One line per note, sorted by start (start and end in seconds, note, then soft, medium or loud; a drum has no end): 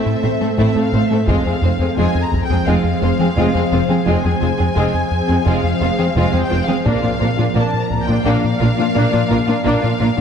0.00 1.24 A3 medium
0.00 1.24 C4 medium
0.00 1.24 A4 medium
0.00 1.24 C5 medium
0.00 0.57 E5 medium
0.06 0.17 A2 soft
0.23 0.30 A1 soft
0.23 0.30 A2 soft
0.23 0.34 A2 soft
0.23 0.30 A3 soft
0.23 0.30 C4 soft
0.23 0.30 C5 soft
0.41 0.48 A2 soft
0.41 0.48 A3 soft
0.41 0.52 A3 soft
0.41 0.48 C4 soft
0.41 0.48 A4 soft
0.58 0.65 A1 soft
0.58 0.69 A2 medium
0.58 0.65 A2 soft
0.58 0.74 A3 soft
0.58 0.74 C4 soft
0.58 0.75 E4 soft
0.58 0.81 E5 medium
0.75 0.83 A2 soft
0.75 0.86 A2 soft
0.75 0.83 A3 soft
0.75 0.82 C4 soft
0.75 0.83 A4 soft
0.81 1.04 F5 medium
0.93 1.00 A1 soft
0.93 1.04 A2 soft
0.93 1.00 A2 soft
0.93 1.00 A3 soft
0.93 1.00 C4 soft
0.93 1.01 C4 soft
0.93 1.00 C5 soft
1.06 1.29 E5 medium
1.11 1.18 A2 soft
1.11 1.18 A3 soft
1.11 1.21 A3 soft
1.11 1.18 A3 soft
1.11 1.18 C4 soft
1.11 1.18 A4 soft
1.27 1.35 F1 soft
1.27 1.35 F2 medium
1.27 1.38 F2 medium
1.27 4.06 F3 medium
1.27 1.44 G#3 soft
1.27 1.45 C4 soft
1.27 4.03 C4 medium
1.27 1.44 F4 soft
1.27 4.06 G#4 medium
1.27 4.04 C5 medium
1.27 1.96 F5 medium
1.27 taiko soft
1.45 1.56 F2 soft
1.45 1.53 F2 soft
1.45 1.53 G#3 soft
1.45 1.53 C4 soft
1.45 1.53 G#4 soft
1.62 1.70 F1 soft
1.62 1.73 F2 soft
1.62 1.70 F2 soft
1.62 1.70 G#3 soft
1.62 1.70 C4 soft
1.62 1.70 F4 soft
1.62 1.70 C5 soft
1.79 1.90 F2 soft
1.79 1.87 F2 soft
1.79 1.88 G#3 soft
1.79 1.88 C4 soft
1.79 1.88 G#4 soft
1.97 2.05 F1 soft
1.97 2.08 F2 medium
1.97 2.05 F2 medium
1.97 2.14 G#3 medium
1.97 2.14 G#3 soft
1.97 2.14 C4 soft
1.97 2.14 F4 medium
1.97 2.20 G#5 medium
2.15 2.26 F2 medium
2.21 2.44 A#5 medium
2.32 2.43 F2 soft
2.32 taiko soft
2.44 2.67 G5 medium
2.50 2.61 F2 soft
2.50 2.57 F2 soft
2.50 2.57 G#3 soft
2.50 2.57 C4 soft
2.50 2.58 G#4 soft
2.67 2.75 F1 medium
2.67 2.78 F2 medium
2.67 2.74 F2 medium
2.67 2.84 G#3 soft
2.67 2.84 C4 soft
2.67 2.84 F4 medium
2.67 4.07 F5 medium
2.84 2.95 F2 soft
3.01 3.10 F1 soft
3.01 3.09 F2 soft
3.01 3.13 F2 soft
3.01 3.10 G#3 soft
3.01 3.10 C4 soft
3.01 3.10 F4 soft
3.01 3.10 C5 soft
3.19 3.26 F2 soft
3.19 3.30 F3 soft
3.19 3.27 G#3 soft
3.19 3.27 C4 soft
3.19 3.27 G#4 soft
3.37 3.45 F1 medium
3.37 3.44 F2 medium
3.37 3.48 F2 medium
3.37 3.54 G#3 soft
3.37 3.54 C4 soft
3.37 3.54 F4 soft
3.54 3.61 F2 soft
3.54 3.65 F2 soft
3.54 3.63 G#3 soft
3.54 3.62 C4 soft
3.54 3.63 C4 soft
3.54 3.62 G#4 soft
3.72 3.80 F1 soft
3.72 3.79 F2 soft
3.72 3.83 F2 soft
3.72 3.80 G#3 soft
3.72 3.80 C4 soft
3.72 3.79 F4 soft
3.72 3.79 C5 soft
3.89 3.96 F2 soft
3.89 4.00 F3 soft
3.89 3.97 G#3 soft
3.89 3.97 C4 soft
3.89 3.97 G#4 soft
4.06 4.14 F1 medium
4.06 4.14 F2 medium
4.06 4.18 F2 medium
4.06 6.82 F3 medium
4.06 4.23 G#3 medium
4.06 4.24 G#3 soft
4.06 6.82 C4 medium
4.06 4.24 C4 medium
4.06 4.23 F4 medium
4.06 6.82 G#4 medium
4.06 6.83 C5 medium
4.06 5.44 G#5 medium
4.23 4.31 F2 soft
4.23 4.35 F2 medium
4.23 4.32 G#3 soft
4.23 4.31 C4 soft
4.23 4.32 C4 soft
4.23 4.31 G#4 soft
4.42 4.49 F1 soft
4.42 4.49 F2 soft
4.42 4.53 F2 soft
4.42 4.49 G#3 soft
4.42 4.49 C4 soft
4.42 4.49 F4 soft
4.42 4.49 C5 soft
4.58 4.66 F2 soft
4.58 4.70 F2 medium
4.58 4.66 G#3 soft
4.58 4.66 C4 soft
4.58 4.66 G#4 soft
4.76 4.84 F1 soft
4.76 4.83 F2 medium
4.76 4.87 F2 medium
4.76 4.93 G#3 medium
4.76 4.93 C4 medium
4.76 4.93 F4 medium
4.94 5.05 F2 medium
5.11 5.22 F2 soft
5.28 5.36 F2 soft
5.28 5.40 F2 soft
5.28 5.37 G#3 soft
5.28 5.35 C4 soft
5.28 5.37 C4 soft
5.28 5.36 G#4 soft
5.46 5.53 F1 medium
5.46 5.53 F2 medium
5.46 5.57 F2 medium
5.46 5.63 G#3 medium
5.46 5.63 C4 medium
5.46 5.63 F4 medium
5.46 6.16 F5 medium
5.64 5.74 F2 medium
5.81 5.89 F1 soft
5.81 5.92 F2 medium
5.81 5.89 F2 soft
5.81 5.89 G#3 soft
5.81 5.89 C4 soft
5.81 5.89 F4 soft
5.81 5.89 C5 soft
5.98 6.06 F2 soft
5.98 6.10 F3 medium
5.98 6.07 G#3 soft
5.98 6.06 C4 soft
5.98 6.07 C4 soft
5.98 6.06 G#4 soft
6.16 6.24 F1 medium
6.16 6.23 F2 medium
6.16 6.27 F2 medium
6.16 6.33 G#3 medium
6.16 6.33 C4 soft
6.16 6.33 F4 medium
6.16 6.40 F5 medium
6.33 6.40 F2 soft
6.33 6.44 F2 soft
6.33 6.41 G#3 soft
6.33 6.41 C4 soft
6.33 6.41 G#4 soft
6.41 6.63 G5 medium
6.50 6.59 F1 soft
6.50 6.58 F2 soft
6.50 6.62 F2 medium
6.50 6.58 G#3 soft
6.50 6.58 C4 soft
6.50 6.58 F4 soft
6.50 6.57 C5 soft
6.64 6.85 F5 medium
6.68 6.75 F2 soft
6.68 6.79 F3 soft
6.68 6.76 G#3 soft
6.68 6.76 C4 soft
6.68 6.76 C4 medium
6.68 6.76 G#4 soft
6.85 6.93 A#1 medium
6.85 6.93 A#2 medium
6.85 6.97 A#2 medium
6.85 9.61 F3 medium
6.85 9.65 A#3 medium
6.85 7.02 A#3 medium
6.85 7.03 A#3 medium
6.85 7.02 D4 medium
6.85 7.03 D4 medium
6.85 9.64 A#4 medium
6.85 9.65 D5 medium
6.85 7.54 F5 medium
6.85 taiko soft
7.03 7.10 A#2 soft
7.03 7.15 A#2 medium
7.03 7.11 A#3 soft
7.03 7.10 D4 soft
7.03 7.12 D4 soft
7.03 7.10 F4 soft
7.20 7.29 A#1 soft
7.20 7.28 A#2 soft
7.20 7.32 A#2 medium
7.20 7.29 A#3 soft
7.20 7.29 D4 soft
7.20 7.27 F4 soft
7.20 7.28 A#4 soft
7.38 7.45 A#2 soft
7.38 7.49 A#2 medium
7.38 7.47 A#3 soft
7.38 7.45 D4 soft
7.38 7.46 D4 soft
7.38 7.45 F4 soft
7.55 7.63 A#1 medium
7.55 7.63 A#2 medium
7.55 7.67 A#2 medium
7.55 7.72 A#3 medium
7.55 7.73 A#3 medium
7.55 7.72 D4 medium
7.55 7.73 D4 medium
7.55 7.79 A5 medium
7.74 7.84 A#2 medium
7.80 8.03 A#5 medium
7.90 8.02 A#2 medium
7.90 taiko soft
8.02 8.26 G5 medium
8.07 8.19 A#2 medium
8.07 8.16 A#2 soft
8.07 8.17 A#3 soft
8.07 8.15 D4 soft
8.07 8.17 D4 soft
8.07 8.14 F4 soft
8.25 8.33 A#1 medium
8.25 8.33 A#2 medium
8.25 8.37 A#2 medium
8.25 8.42 A#3 medium
8.25 8.43 A#3 medium
8.25 8.42 D4 medium
8.25 8.43 D4 medium
8.25 9.64 F5 medium
8.45 8.55 A#2 medium
8.60 8.68 A#1 soft
8.60 8.68 A#2 soft
8.60 8.72 A#2 soft
8.60 8.68 A#3 medium
8.60 8.69 D4 medium
8.60 8.67 F4 soft
8.60 8.67 A#4 soft
8.78 8.85 A#2 soft
8.78 8.86 A#3 soft
8.78 8.89 A#3 medium
8.78 8.85 D4 soft
8.78 8.86 D4 soft
8.78 8.85 F4 soft
8.95 9.03 A#1 medium
8.95 9.02 A#2 medium
8.95 9.07 A#2 medium
8.95 9.12 A#3 medium
8.95 9.12 D4 medium
9.12 9.19 A#2 soft
9.12 9.24 A#2 medium
9.12 9.20 A#3 soft
9.12 9.20 D4 soft
9.12 9.21 D4 medium
9.12 9.20 F4 soft
9.29 9.37 A#1 soft
9.29 9.37 A#2 soft
9.29 9.42 A#2 medium
9.29 9.38 A#3 soft
9.29 9.38 D4 soft
9.29 9.37 F4 medium
9.29 9.37 A#4 medium
9.47 9.54 A#2 soft
9.47 9.55 A#3 soft
9.47 9.59 A#3 medium
9.47 9.55 D4 medium
9.47 9.54 F4 medium
9.64 9.73 A#1 medium
9.64 9.72 A#2 medium
9.64 9.76 A#2 medium
9.64 10.21 F3 medium
9.64 9.81 A#3 medium
9.64 10.21 A#3 medium
9.64 9.82 A#3 medium
9.64 9.81 D4 medium
9.64 9.82 D4 medium
9.64 10.21 A#4 medium
9.64 10.21 D5 medium
9.64 10.21 F5 medium
9.82 9.89 A#2 soft
9.82 9.94 A#2 medium
9.82 9.90 A#3 soft
9.82 9.89 D4 soft
9.82 9.90 D4 soft
9.82 9.89 F4 soft
10.00 10.07 A#1 soft
10.00 10.07 A#2 soft
10.00 10.12 A#2 medium
10.00 10.08 A#3 soft
10.00 10.08 D4 soft
10.00 10.07 F4 soft
10.00 10.07 A#4 soft
10.17 10.21 A#2 soft
10.17 10.21 D4 soft
10.17 10.21 F4 soft